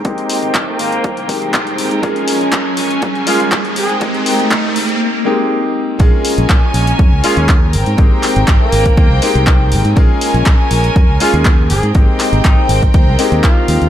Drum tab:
HH |xxoxx-oxxxo-xxox|xxo-x-oxxxoxxxox|xxoxx-ox--------|x-oxx-oxx-oxx-ox|
CP |----x-------x---|----x-------x---|----x-----------|----x-------x---|
BD |o---o---o-o-o---|o---o---o---o---|o---o-----------|o---o---o---o---|

HH |x-oxx-oxx-oxx-ox|x-oxx-oxx-o-x-ox|x-oxx-oxx-oxx-ox|
CP |--x-x-------x---|----x-------x---|--x-x-------x---|
BD |o---o--oo---o---|o---o---o---o---|o---o--oo---o---|